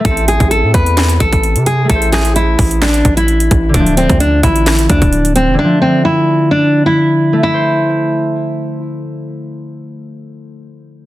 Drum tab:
HH |xxxxx-xxxxxxxxx-|xxxxx-oxxxxxxxx-|xxxxx-xxxxxxxxx-|----------------|
CP |--------x-------|--x-----x-------|--------x-------|----------------|
SD |--------o-------|--o-----o-------|--------o-------|----------------|
BD |o--o--o---oo----|o-----o---o---o-|o--o--o---oo----|----------------|

HH |----------------|----------------|
CP |----------------|----------------|
SD |----------------|----------------|
BD |----------------|----------------|